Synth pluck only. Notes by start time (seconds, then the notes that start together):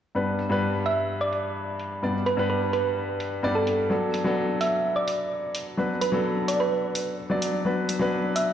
0.86 E5
1.21 D5
2.26 B4
2.50 B4
2.73 B4
3.55 A4
4.61 E5
4.96 D5
6.01 B4
6.48 D5
6.60 B4
8.36 E5